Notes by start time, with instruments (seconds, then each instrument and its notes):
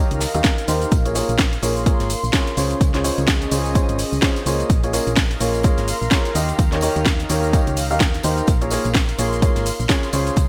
Already playing: grand piano D#3 D#4 G4 A#4 C#5, analog synth pad D#4 A#4 F5
0.11 fm bass C#2, closed hi-hat, tambourine, shaker
0.20 snare, open hi-hat, tambourine, shaker
0.34 fm bass D#2, grand piano D#3 D#4 G4 A#4 F5, closed hi-hat, tambourine, shaker
0.44 kick, snare, closed hi-hat, tambourine, shaker
0.58 closed hi-hat, tambourine, shaker
0.68 fm bass D#2, grand piano D#4 G4 A#4 C5, snare, closed hi-hat, open hi-hat, tambourine, shaker
0.81 closed hi-hat, tambourine, shaker
0.91 fm bass A#1, kick, closed hi-hat, tambourine, shaker
1.05 grand piano A#3 F4 G#4 A#4 C#5, closed hi-hat, tambourine, shaker
1.14 grand piano A#3 F4 G#4 A#4 C#5, snare, closed hi-hat, open hi-hat, tambourine, shaker
1.29 fm bass A#1, closed hi-hat, tambourine, shaker
1.38 kick, snare, closed hi-hat, open hi-hat, tambourine, shaker
1.49 analog synth pad C6, closed hi-hat, tambourine, shaker
1.62 fm bass A#1, grand piano A#3 F4 G#4 A#4 C#5, closed hi-hat, open hi-hat, tambourine, shaker
1.76 tambourine, shaker
1.86 grand piano A#3 F4 G#4 A#4 C#5, kick, closed hi-hat, tambourine, shaker
2.00 fm bass G#1, snare, closed hi-hat, tambourine, shaker
2.10 closed hi-hat, open hi-hat, tambourine, shaker
2.24 fm bass A#1, tambourine, shaker
2.33 grand piano C#3 F4 G#4 A#4 C#5, kick, snare, closed hi-hat, tambourine, shaker
2.47 snare, closed hi-hat, tambourine, shaker
2.57 fm bass C#2, grand piano C#3 F4 G#4 C5 C#5, analog synth pad C#4, closed hi-hat, open hi-hat, tambourine, shaker
2.66 analog synth pad G#4
2.70 analog synth pad D#5, closed hi-hat, tambourine, shaker
2.81 fm bass C#2, kick, closed hi-hat, tambourine, shaker
2.94 grand piano C#3 F4 G#4 C5 C#5, snare, closed hi-hat, tambourine, shaker
3.04 grand piano C#3 F4 G#4 C5 C#5, closed hi-hat, open hi-hat, tambourine, shaker
3.18 fm bass C#2, closed hi-hat, tambourine, shaker
3.27 kick, snare, closed hi-hat, tambourine, shaker
3.41 closed hi-hat, tambourine, shaker
3.51 fm bass C#2, grand piano C#3 F4 G#4 C5 C#5, closed hi-hat, open hi-hat, tambourine, shaker
3.65 tambourine, shaker
3.75 grand piano C#3 F4 G#4 C5 C#5, kick, closed hi-hat, tambourine, shaker
3.89 fm bass G#1, closed hi-hat, tambourine, shaker
3.99 closed hi-hat, open hi-hat, tambourine, shaker
4.13 fm bass C#2, tambourine, shaker
4.22 grand piano C#3 F4 G#4 C5 C#5, kick, snare, closed hi-hat, tambourine, shaker
4.36 snare, closed hi-hat, tambourine, shaker
4.46 fm bass C#2, grand piano A#3 F4 G#4 C5 C#5, closed hi-hat, open hi-hat, tambourine, shaker
4.60 closed hi-hat, tambourine, shaker
4.70 fm bass A#1, analog synth pad A#4, kick, closed hi-hat, tambourine, shaker
4.83 grand piano A#3 F4 G#4 A#4 C#5, closed hi-hat, tambourine, shaker
4.93 grand piano A#3 F4 G#4 A#4 C#5, snare, closed hi-hat, open hi-hat, tambourine, shaker
4.99 analog synth pad F5
5.07 fm bass A#1, closed hi-hat, tambourine, shaker
5.16 kick, snare, closed hi-hat, tambourine, shaker
5.31 closed hi-hat, tambourine, shaker
5.35 analog synth pad C6
5.40 fm bass A#1, grand piano A#3 F4 G#4 A#4 C#5, closed hi-hat, open hi-hat, tambourine, shaker
5.54 tambourine, shaker
5.63 grand piano A#3 F4 G#4 A#4 C#5, kick, closed hi-hat, tambourine, shaker
5.77 fm bass G#1, snare, closed hi-hat, tambourine, shaker
5.88 closed hi-hat, open hi-hat, tambourine, shaker
6.02 fm bass A#1, tambourine, shaker
6.11 grand piano F4 G#4 A#4 C#5, kick, snare, closed hi-hat, tambourine, shaker
6.25 snare, closed hi-hat, tambourine, shaker
6.35 fm bass D#2, grand piano D#3 D#4 G4 A#4 D#5, analog synth pad D#4, closed hi-hat, open hi-hat, tambourine, shaker
6.49 closed hi-hat, tambourine, shaker
6.59 fm bass D#2, kick, closed hi-hat, tambourine, shaker
6.72 grand piano D#3 D#4 G4 A#4 C#5, snare, closed hi-hat, tambourine, shaker
6.81 grand piano D#3 D#4 G4 A#4 C#5, closed hi-hat, open hi-hat, tambourine, shaker
6.96 fm bass D#2, closed hi-hat, tambourine, shaker
7.05 kick, snare, closed hi-hat, tambourine, shaker
7.19 closed hi-hat, tambourine, shaker
7.29 fm bass D#2, grand piano D#3 D#4 G4 A#4 C#5, closed hi-hat, open hi-hat, tambourine, shaker
7.43 tambourine, shaker
7.53 grand piano D#3 D#4 G4 A#4 C#5, kick, closed hi-hat, tambourine, shaker
7.67 fm bass C#2, closed hi-hat, tambourine, shaker
7.77 closed hi-hat, open hi-hat, tambourine, shaker
7.90 fm bass D#2, grand piano D#3 D#4 G4 A#4 F5, tambourine, shaker
8.00 kick, snare, closed hi-hat, tambourine, shaker
8.14 snare, closed hi-hat, tambourine, shaker
8.23 fm bass D#2, grand piano D#4 G4 A#4 C5, closed hi-hat, open hi-hat, tambourine, shaker
8.37 closed hi-hat, tambourine, shaker
8.47 fm bass A#1, kick, closed hi-hat, tambourine, shaker
8.61 grand piano A#3 F4 G#4 A#4 C#5, closed hi-hat, tambourine, shaker
8.70 grand piano A#3 F4 G#4 A#4 C#5, snare, closed hi-hat, open hi-hat, tambourine, shaker
8.79 analog synth pad C6
8.84 fm bass A#1, closed hi-hat, tambourine, shaker
8.94 kick, snare, closed hi-hat, open hi-hat, tambourine, shaker
9.09 closed hi-hat, tambourine, shaker
9.19 fm bass A#1, grand piano A#3 F4 G#4 A#4 C#5, closed hi-hat, open hi-hat, tambourine, shaker
9.33 tambourine, shaker
9.42 grand piano A#3 F4 G#4 A#4 C#5, kick, closed hi-hat, tambourine, shaker
9.55 fm bass G#1, snare, closed hi-hat, tambourine, shaker
9.66 closed hi-hat, open hi-hat, tambourine, shaker
9.80 fm bass A#1, tambourine, shaker
9.89 grand piano C#3 F4 G#4 A#4 C#5, kick, snare, closed hi-hat, tambourine, shaker
10.03 snare, closed hi-hat, tambourine, shaker
10.13 fm bass C#2, grand piano C#3 F4 G#4 C5 C#5, analog synth pad C#4, closed hi-hat, open hi-hat, tambourine, shaker
10.24 analog synth pad G#4, closed hi-hat, tambourine, shaker
10.33 analog synth pad D#5, closed hi-hat
10.37 fm bass C#2, kick, closed hi-hat, tambourine, shaker